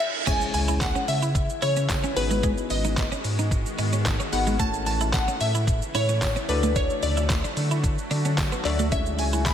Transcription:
Already playing: reverse cymbal
0.00 synth pluck E5
0.27 ambient pad C#3 E3 G#3 E4, tine electric piano G#3 C#4 E4 G#4 C#5, clean electric guitar C#4, synth pluck G#5, kick, closed hi-hat, crash, impact, shaker
0.41 shaker
0.54 analog synth bass C#2, synth pluck G#5, muted clean electric guitar stroke, open hi-hat, shaker
0.68 clean electric guitar E4, shaker
0.81 synth pluck F#5, kick, snare, clap, closed hi-hat, tambourine, shaker
0.95 clean electric guitar C#4, shaker
1.08 analog synth bass C#3, synth pluck E5, muted clean electric guitar stroke, open hi-hat, shaker
1.23 clean electric guitar E4, shaker
1.35 muted clean electric guitar stroke, kick, closed hi-hat, shaker
1.50 shaker
1.62 analog synth bass C#3, clean electric guitar E4, synth pluck C#5, open hi-hat, shaker
1.77 clean electric guitar C#4, shaker
1.89 kick, snare, clap, closed hi-hat, tambourine, shaker
2.04 clean electric guitar C#4, shaker
2.16 analog synth bass G#1, ambient pad D#3 G#3 B3 F#4, tine electric piano B3 D#4 F#4 G#4 B4, synth pluck B4, muted clean electric guitar stroke, open hi-hat, shaker
2.31 clean electric guitar G#3, shaker
2.43 clean electric guitar G#3, kick, closed hi-hat, shaker
2.58 shaker
2.70 analog synth bass G#1, synth pluck D#5, muted clean electric guitar stroke, open hi-hat, shaker
2.85 clean electric guitar D#4, shaker
2.97 kick, snare, clap, closed hi-hat, tambourine, shaker
3.12 clean electric guitar C#4, shaker
3.24 analog synth bass G#2, muted clean electric guitar stroke, open hi-hat, shaker
3.39 clean electric guitar D#4, shaker
3.51 muted clean electric guitar stroke, kick, closed hi-hat, shaker
3.66 shaker
3.79 analog synth bass G#2, clean electric guitar D#4, open hi-hat, shaker
3.93 clean electric guitar C#4, shaker
4.06 kick, snare, clap, closed hi-hat, tambourine, shaker
4.20 clean electric guitar C#4, shaker
4.32 analog synth bass G#1, tine electric piano B3 D#4 F#4 G#4 B4, synth pluck F#5, muted clean electric guitar stroke, open hi-hat, shaker
4.47 clean electric guitar G#3, shaker
4.59 ambient pad C#3 E3 A3 E4, tine electric piano A3 C#4 E4 A4 C#5, clean electric guitar A3, synth pluck A5, kick, closed hi-hat, shaker
4.74 shaker
4.86 analog synth bass A1, synth pluck A5, muted clean electric guitar stroke, open hi-hat, shaker
5.01 clean electric guitar E4, shaker
5.13 synth pluck F#5, kick, snare, clap, closed hi-hat, tambourine, shaker
5.28 clean electric guitar C#4, shaker
5.41 analog synth bass A2, synth pluck E5, muted clean electric guitar stroke, open hi-hat, shaker
5.55 clean electric guitar E4, shaker
5.67 muted clean electric guitar stroke, kick, closed hi-hat, shaker
5.82 shaker
5.95 analog synth bass A2, clean electric guitar E4, synth pluck C#5, open hi-hat, shaker
6.09 clean electric guitar C#4, shaker
6.22 kick, snare, clap, closed hi-hat, tambourine, shaker
6.36 clean electric guitar C#4, shaker
6.49 analog synth bass D2, ambient pad D3 F#3 F#4, tine electric piano A3 D4 F#4 A4 D5, synth pluck B4, muted clean electric guitar stroke, open hi-hat, shaker
6.63 clean electric guitar A3, shaker
6.76 clean electric guitar D4, synth pluck C#5, kick, closed hi-hat, shaker
6.90 shaker
7.03 analog synth bass D2, synth pluck D5, muted clean electric guitar stroke, open hi-hat, shaker
7.17 clean electric guitar E4, shaker
7.30 kick, snare, clap, closed hi-hat, tambourine, shaker
7.44 clean electric guitar D4, shaker
7.57 analog synth bass D3, muted clean electric guitar stroke, open hi-hat, shaker
7.71 clean electric guitar E4, shaker
7.84 muted clean electric guitar stroke, kick, closed hi-hat, shaker
7.98 shaker
8.11 analog synth bass D3, clean electric guitar D4, open hi-hat, shaker
8.25 clean electric guitar C#4, shaker
8.38 kick, snare, clap, closed hi-hat, tambourine, shaker
8.52 clean electric guitar B3, shaker
8.65 analog synth bass D2, tine electric piano A3 D4 F#4 A4 E5, synth pluck D5, muted clean electric guitar stroke, clap, open hi-hat, shaker
8.79 clean electric guitar A3, shaker
8.92 ambient pad C#3 E3 G#3 E4, tine electric piano G#3 C#4 E4 G#4 C#5, clean electric guitar C#4, synth pluck E5, kick, closed hi-hat, shaker
9.06 shaker
9.19 analog synth bass C#2, synth pluck G#5, muted clean electric guitar stroke, open hi-hat, shaker
9.33 clean electric guitar E4, shaker
9.46 synth pluck B5, kick, snare, clap, closed hi-hat, tambourine, shaker

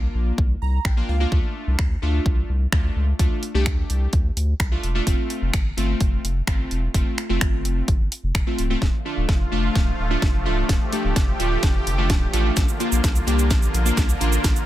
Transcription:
Already playing: synth keys A#3 D4 F4
0.15 sub bass A#1
0.38 sub bass C2, kick
0.62 sub bass C2, synth keys A#5
0.85 sub bass A#1, synth keys G5, finger snap, kick
0.97 synth keys A#3 D4 F4
1.09 sub bass C#2, synth keys F5
1.20 synth keys A#3 D4 F4
1.32 sub bass D2, synth keys A3 D4 F4, kick
1.67 sub bass C2
1.79 sub bass D2, finger snap, kick
2.02 sub bass D2, synth keys A3 D4 F4
2.26 sub bass C2, kick
2.49 sub bass C2
2.72 sub bass D2, synth keys A3 D4 F4, finger snap, kick
2.96 sub bass C#2
3.19 sub bass D2, synth keys A3 D4 F4, kick, closed hi-hat
3.43 closed hi-hat
3.54 sub bass C2, synth keys A3 D4 G4
3.66 sub bass D2, finger snap, kick, closed hi-hat
3.90 sub bass C2, closed hi-hat
4.13 sub bass D2, kick, closed hi-hat
4.36 sub bass D2, closed hi-hat
4.60 sub bass C2, finger snap, kick, closed hi-hat
4.71 synth keys A3 D4 F4
4.83 sub bass E1, closed hi-hat
4.95 synth keys A3 D4 F4
5.07 sub bass F1, synth keys A3 C4 F4, kick, closed hi-hat
5.30 closed hi-hat
5.42 sub bass F1
5.54 sub bass G1, finger snap, kick, closed hi-hat
5.77 sub bass G1, synth keys A3 C4 F4, closed hi-hat
6.00 sub bass F1, kick, closed hi-hat
6.24 sub bass F1, closed hi-hat
6.47 sub bass G1, synth keys A3 C4 F4, finger snap, kick, closed hi-hat
6.71 sub bass E1, closed hi-hat
6.94 sub bass F1, synth keys A3 C4 F4, kick, closed hi-hat
7.18 finger snap, closed hi-hat
7.29 sub bass F1, synth keys A3 C4 F4
7.41 sub bass G1, finger snap, kick, closed hi-hat
7.65 sub bass F1, closed hi-hat
7.88 sub bass G1, kick, closed hi-hat
8.00 sub bass G1
8.12 closed hi-hat
8.23 sub bass F1
8.35 sub bass F1, finger snap, kick, closed hi-hat
8.47 synth keys A3 C4 F4
8.58 sub bass C#1, closed hi-hat
8.70 synth keys A3 C4 F4
8.82 sub bass D1, supersaw synth D3 F3 A3 F4, kick, snare
9.05 synth keys A3 D4 F4
9.17 sub bass D1
9.29 sub bass F1, kick, snare
9.52 sub bass F1, synth keys A3 D4 F4
9.75 sub bass D1, kick, snare
9.99 sub bass D1
10.10 synth keys A3 D4 F4
10.22 sub bass F1, kick, snare
10.45 sub bass C#1, synth keys A3 D4 F4
10.69 sub bass D1, supersaw synth G4, kick, snare, closed hi-hat
10.92 synth keys A3 D4 G4, closed hi-hat
11.04 sub bass D1
11.16 sub bass F1, kick, snare, closed hi-hat
11.39 sub bass D1, synth keys A3 D4 F4, closed hi-hat
11.63 sub bass F1, kick, snare, closed hi-hat
11.86 sub bass F1, closed hi-hat
11.98 synth keys A3 D4 F4
12.10 sub bass D1, kick, snare, closed hi-hat
12.33 sub bass A1, synth keys A3 D4 F4, closed hi-hat
12.57 sub bass A#1, supersaw synth F3 A#3 F4, kick, snare, closed hi-hat, shaker
12.69 shaker
12.80 synth keys A#3 D4 F4, closed hi-hat, shaker
12.92 sub bass A#1, shaker
13.04 sub bass C2, kick, snare, closed hi-hat, shaker
13.16 shaker
13.27 sub bass C2, synth keys A#3 D4 G4, closed hi-hat, shaker
13.39 shaker
13.51 sub bass A#1, kick, snare, closed hi-hat, shaker
13.62 shaker
13.74 sub bass A#1, closed hi-hat, shaker
13.85 synth keys A#3 D4 F4, shaker
13.97 sub bass C2, kick, snare, closed hi-hat, shaker
14.09 shaker
14.20 sub bass A1, synth keys A#3 D4 F4, closed hi-hat, shaker
14.33 shaker
14.44 sub bass A#1, kick, snare, closed hi-hat, shaker
14.56 shaker

